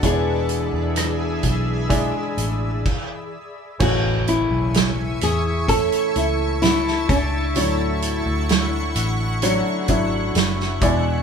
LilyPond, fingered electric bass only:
\new Staff \with { instrumentName = "Fingered electric bass" } { \clef bass \time 4/4 \key a \major \tempo 4 = 64 e,8. e,8. b,,8. r16 a,,8 r4 | a,,8. b,,8. e,8. r16 cis,4 cis,8 | d,8. d,8. a,,8. r16 gis,,8 fis,,8 e,8 | }